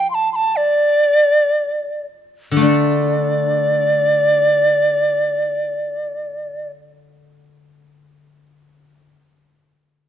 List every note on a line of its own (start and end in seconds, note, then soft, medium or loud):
0.11 0.32 A5 medium
0.11 0.16 C6 medium
0.33 0.58 A5 medium
0.33 0.37 C6 medium
0.56 2.05 D5 medium
2.51 9.14 D3 soft
2.56 8.22 A3 soft
2.61 7.37 D4 soft
2.61 6.71 D5 medium